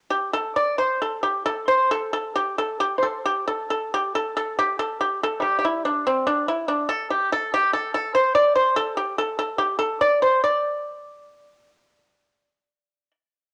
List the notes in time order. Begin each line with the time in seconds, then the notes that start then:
0.10 G4
0.33 A4
0.56 D5
0.78 C5
1.02 A4
1.23 G4
1.46 A4
1.68 C5
1.91 A4
2.13 A4
2.36 G4
2.58 A4
2.80 G4
2.98 C5
3.03 A4
3.26 G4
3.48 A4
3.70 A4
3.94 G4
4.15 A4
4.37 A4
4.59 G4
4.79 A4
5.01 G4
5.23 A4
5.40 G3 G4
5.59 G4
5.65 E4
5.85 D4
6.07 C4
6.27 D4
6.48 E4
6.68 D4
6.89 A4
7.11 G4
7.33 A4
7.54 G4
7.73 A4
7.94 A4
8.15 C5
8.35 D5
8.56 C5
8.76 A4
8.97 G4
9.18 A4
9.39 A4
9.58 G4
9.79 A4
10.01 D5
10.22 C5
10.44 D5